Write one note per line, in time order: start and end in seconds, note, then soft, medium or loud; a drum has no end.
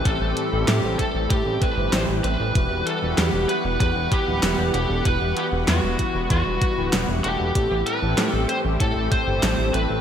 0.00 7.51 E3 medium
0.00 7.51 G3 medium
0.00 2.51 A3 medium
0.00 2.51 C4 medium
0.00 2.51 G4 medium
0.05 0.18 A1 loud
0.05 0.49 A2 medium
0.05 0.49 C4 medium
0.05 0.49 E4 medium
0.05 0.49 G4 medium
0.05 0.67 A4 loud
0.05 0.49 A4 medium
0.05 kick loud
0.05 closed hi-hat medium
0.21 0.34 A1 medium
0.37 closed hi-hat medium
0.52 0.65 A1 medium
0.52 0.80 A2 loud
0.52 0.80 C4 medium
0.52 0.80 E4 medium
0.52 0.80 G4 medium
0.52 0.80 A4 loud
0.68 0.81 A2 loud
0.68 0.97 G4 loud
0.68 snare loud
0.68 closed hi-hat medium
0.83 0.96 A1 medium
0.83 1.27 A2 medium
0.83 1.27 C4 medium
0.83 1.27 E4 medium
0.83 1.27 G4 medium
0.83 1.27 A4 medium
0.99 1.30 A4 medium
0.99 kick medium
0.99 closed hi-hat medium
1.15 1.28 A1 medium
1.30 1.73 A2 medium
1.30 1.43 A2 loud
1.30 1.73 C4 medium
1.30 1.73 E4 medium
1.30 1.63 G4 loud
1.30 1.73 G4 medium
1.30 1.73 A4 medium
1.30 kick loud
1.30 closed hi-hat medium
1.46 1.59 A1 medium
1.62 1.93 B4 loud
1.62 kick loud
1.62 closed hi-hat medium
1.77 1.90 G1 medium
1.77 2.05 A2 medium
1.77 2.05 C4 medium
1.77 2.05 E4 medium
1.77 2.05 G4 medium
1.77 2.05 B4 loud
1.93 2.06 A1 loud
1.93 2.02 C5 loud
1.93 snare loud
1.93 closed hi-hat medium
2.08 2.21 A1 medium
2.08 2.25 A2 loud
2.08 2.25 C4 loud
2.08 2.25 E4 medium
2.08 2.25 G4 medium
2.08 2.25 B4 loud
2.24 2.37 A1 medium
2.24 2.89 B4 loud
2.24 closed hi-hat medium
2.40 2.53 A1 medium
2.55 2.68 E1 loud
2.55 2.98 E3 medium
2.55 7.51 B3 medium
2.55 2.98 E4 medium
2.55 2.98 F#4 medium
2.55 2.99 G4 medium
2.55 2.99 B4 medium
2.55 7.51 F#5 medium
2.55 kick loud
2.55 closed hi-hat medium
2.71 2.84 E1 medium
2.87 3.17 A4 medium
2.87 closed hi-hat medium
3.02 3.15 E1 medium
3.02 3.30 E3 loud
3.02 3.30 E4 medium
3.02 3.30 F#4 medium
3.02 3.30 G4 medium
3.02 3.30 B4 loud
3.18 3.31 E2 loud
3.18 3.49 G4 medium
3.18 snare loud
3.18 closed hi-hat medium
3.33 3.46 E1 medium
3.33 3.77 E3 medium
3.33 3.77 E4 medium
3.33 3.77 F#4 medium
3.33 3.77 G4 medium
3.33 3.77 B4 medium
3.49 3.79 B4 loud
3.49 closed hi-hat medium
3.65 3.78 E1 medium
3.80 3.93 E2 loud
3.80 4.24 E3 medium
3.80 4.24 E4 medium
3.80 4.24 F#4 medium
3.80 4.24 G4 medium
3.80 4.13 B4 loud
3.80 4.24 B4 medium
3.80 kick loud
3.80 closed hi-hat medium
3.96 4.09 E1 medium
4.12 4.73 G4 loud
4.12 kick loud
4.12 closed hi-hat medium
4.27 4.40 D1 medium
4.27 4.70 E3 loud
4.27 4.70 E4 medium
4.27 4.70 G4 medium
4.27 4.70 B4 loud
4.27 4.70 F#5 medium
4.43 4.56 E1 loud
4.43 snare loud
4.43 closed hi-hat medium
4.58 4.71 E1 medium
4.74 4.87 E1 medium
4.74 5.01 E3 medium
4.74 5.01 E4 medium
4.74 5.01 F#4 medium
4.74 5.01 G4 medium
4.74 5.06 G4 medium
4.74 5.01 A4 medium
4.74 closed hi-hat medium
4.90 5.03 E1 medium
5.05 5.18 E1 loud
5.05 5.49 E3 medium
5.05 5.49 E4 medium
5.05 5.49 F#4 medium
5.05 5.49 G4 medium
5.05 5.38 B4 loud
5.05 5.49 B4 medium
5.05 kick loud
5.05 closed hi-hat medium
5.21 5.34 E1 medium
5.37 5.45 G4 medium
5.37 closed hi-hat medium
5.52 5.65 E1 medium
5.52 5.80 E3 loud
5.52 5.80 E4 medium
5.52 5.80 F#4 medium
5.52 5.80 G4 medium
5.52 5.80 B4 loud
5.68 5.81 E2 loud
5.68 6.29 F#4 medium
5.68 snare loud
5.68 closed hi-hat medium
5.83 5.96 E1 medium
5.83 6.27 E3 medium
5.83 6.27 G3 medium
5.83 6.27 E4 medium
5.83 6.27 F#4 medium
5.83 6.27 B4 medium
5.99 kick medium
5.99 closed hi-hat medium
6.15 6.28 E1 medium
6.30 6.43 E2 loud
6.30 6.74 E3 medium
6.30 6.74 G3 medium
6.30 6.73 E4 medium
6.30 6.74 F#4 medium
6.30 6.89 F#4 medium
6.30 6.73 B4 medium
6.30 kick loud
6.30 closed hi-hat medium
6.46 6.59 E1 medium
6.62 kick loud
6.62 closed hi-hat medium
6.77 6.90 D1 medium
6.77 7.20 E3 medium
6.77 7.20 E4 medium
6.77 7.20 F#4 medium
6.77 7.20 G4 medium
6.77 7.20 B4 loud
6.93 7.06 E1 loud
6.93 snare loud
6.93 closed hi-hat medium
7.08 7.21 E1 medium
7.24 7.37 E1 medium
7.24 7.51 A3 medium
7.24 7.51 E4 medium
7.24 7.51 F#4 medium
7.24 7.51 G4 medium
7.24 7.83 G4 medium
7.24 7.51 A4 medium
7.24 closed hi-hat medium
7.40 7.53 E1 medium
7.55 7.68 A1 loud
7.55 7.98 A2 medium
7.55 10.01 E3 medium
7.55 10.01 G3 medium
7.55 10.01 A3 medium
7.55 7.98 C4 medium
7.55 10.01 C4 medium
7.55 7.98 E4 medium
7.55 7.98 G4 medium
7.55 10.01 G4 medium
7.55 7.98 A4 medium
7.55 kick loud
7.55 closed hi-hat medium
7.71 7.84 A1 medium
7.87 8.32 B4 loud
7.87 closed hi-hat medium
8.02 8.15 A1 medium
8.02 8.30 A2 loud
8.02 8.30 C4 medium
8.02 8.30 E4 medium
8.02 8.30 G4 medium
8.02 8.30 A4 loud
8.18 8.31 A2 loud
8.18 snare loud
8.18 closed hi-hat medium
8.32 8.46 A1 medium
8.32 8.77 A2 medium
8.32 8.77 C4 medium
8.32 8.77 E4 medium
8.32 8.77 G4 medium
8.32 8.45 A4 loud
8.32 8.77 A4 medium
8.49 8.58 C5 loud
8.49 closed hi-hat medium
8.65 8.78 A1 medium
8.80 9.24 A2 medium
8.80 8.93 A2 loud
8.80 9.24 C4 medium
8.80 9.24 E4 medium
8.80 9.24 G4 medium
8.80 9.24 A4 medium
8.80 9.10 A4 loud
8.80 kick loud
8.80 closed hi-hat medium
8.96 9.09 A1 medium
9.12 9.74 C5 loud
9.12 kick loud
9.12 closed hi-hat medium
9.27 9.40 G1 medium
9.27 9.70 A2 medium
9.27 9.70 C4 medium
9.27 9.70 E4 medium
9.27 9.70 G4 medium
9.27 9.70 A4 loud
9.43 9.56 A1 loud
9.43 snare loud
9.43 closed hi-hat medium
9.59 9.71 A1 medium
9.74 9.87 A1 medium
9.74 10.01 A2 medium
9.74 10.01 C4 medium
9.74 10.01 E4 medium
9.74 10.01 G4 medium
9.74 10.01 A4 medium
9.74 10.01 B4 loud
9.74 closed hi-hat medium
9.90 10.01 A1 medium